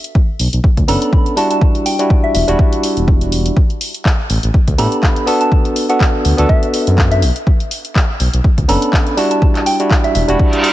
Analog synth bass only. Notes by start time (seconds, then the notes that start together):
0.39 B1
0.53 B1
0.77 D2
0.88 F#1
2.35 E1
2.48 E1
2.97 E1
4.30 A1
4.43 A1
4.68 D2
4.78 A2
6.25 D2
6.38 D2
6.87 F#2
7.22 B1
8.20 B1
8.33 B1
8.58 D2
8.69 F#1
10.15 E1
10.28 E1